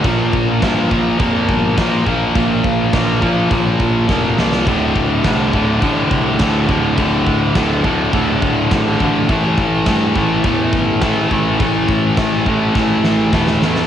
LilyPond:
<<
  \new Staff \with { instrumentName = "Distorted electric guitar" } { \clef bass \time 4/4 \key d \minor \tempo 4 = 104 <bes, f bes>4 <bes, f bes>8 <bes, f bes>8 <bes, f bes>4 <bes, f bes>8 <bes, f bes>8 | <bes, f bes>4 <bes, f bes>8 <bes, f bes>8 <bes, f bes>4 <bes, f bes>8 <bes, f bes>8 | <d, a, d>4 <d, a, d>8 <d, a, d>8 <d, a, d>4 <d, a, d>8 <d, a, d>8 | <d, a, d>4 <d, a, d>8 <d, a, d>8 <d, a, d>4 <d, a, d>8 <d, a, d>8 |
<a, e a>4 <a, e a>8 <a, e a>8 <a, e a>4 <a, e a>8 <a, e a>8 | <a, e a>4 <a, e a>8 <a, e a>8 <a, e a>4 <a, e a>8 <a, e a>8 | }
  \new Staff \with { instrumentName = "Distorted electric guitar" } { \clef bass \time 4/4 \key d \minor <bes, f bes>4 <bes, f bes>8 <bes, f bes>8 <bes, f bes>4 <bes, f bes>8 <bes, f bes>8 | <bes, f bes>4 <bes, f bes>8 <bes, f bes>8 <bes, f bes>4 <bes, f bes>8 <bes, f bes>8 | <d, a, d>4 <d, a, d>8 <d, a, d>8 <d, a, d>4 <d, a, d>8 <d, a, d>8 | <d, a, d>4 <d, a, d>8 <d, a, d>8 <d, a, d>4 <d, a, d>8 <d, a, d>8 |
<a, e a>4 <a, e a>8 <a, e a>8 <a, e a>4 <a, e a>8 <a, e a>8 | <a, e a>4 <a, e a>8 <a, e a>8 <a, e a>4 <a, e a>8 <a, e a>8 | }
  \new Staff \with { instrumentName = "Overdriven electric guitar" } { \clef bass \time 4/4 \key d \minor <bes, f bes>4 <bes, f bes>8 <bes, f bes>8 <bes, f bes>4 <bes, f bes>8 <bes, f bes>8 | <bes, f bes>4 <bes, f bes>8 <bes, f bes>8 <bes, f bes>4 <bes, f bes>8 <bes, f bes>8 | <d, a, d>4 <d, a, d>8 <d, a, d>8 <d, a, d>4 <d, a, d>8 <d, a, d>8 | <d, a, d>4 <d, a, d>8 <d, a, d>8 <d, a, d>4 <d, a, d>8 <d, a, d>8 |
<a, e a>4 <a, e a>8 <a, e a>8 <a, e a>4 <a, e a>8 <a, e a>8 | <a, e a>4 <a, e a>8 <a, e a>8 <a, e a>4 <a, e a>8 <a, e a>8 | }
  \new Staff \with { instrumentName = "Picked electric bass" } { \clef bass \time 4/4 \key d \minor bes,,8 bes,,8 g,8 bes,,8 f,8 g,,8 bes,8 bes,,8 | bes,,8 bes,,8 bes,,8 bes,,8 bes,,8 bes,,8 f,,8 c,8 | d,,8 d,,8 c,8 d,,8 a,,8 c,8 d,8 d,,8 | d,,8 d,,8 d,,8 d,,8 d,,8 d,,8 a,,8 a,,8 |
a,,8 a,,8 g,8 a,,8 e,8 g,,8 a,8 a,,8 | a,,8 a,,8 a,,8 a,,8 a,,8 a,,8 e,,8 e,8 | }
  \new DrumStaff \with { instrumentName = "Drums" } \drummode { \time 4/4 <cymc bd>8 bd8 <cymc bd sn>8 bd8 <cymc bd>8 bd8 <cymc bd sn>8 bd8 | <cymc bd>8 bd8 <cymc bd sn>8 bd8 <cymc bd>8 bd8 <bd sn>8 sn16 sn16 | <cymc bd>8 bd8 <cymc bd sn>8 bd8 <cymc bd>8 bd8 <cymc bd sn>8 bd8 | <cymc bd>8 bd8 <cymc bd sn>8 bd8 <cymc bd>8 bd8 <cymc bd sn>8 bd8 |
<cymc bd>8 bd8 <cymc bd sn>8 bd8 <cymc bd>8 bd8 <cymc bd sn>8 bd8 | <cymc bd>8 bd8 <cymc bd sn>8 bd8 <bd sn>8 sn8 <bd sn>16 sn16 sn16 sn16 | }
>>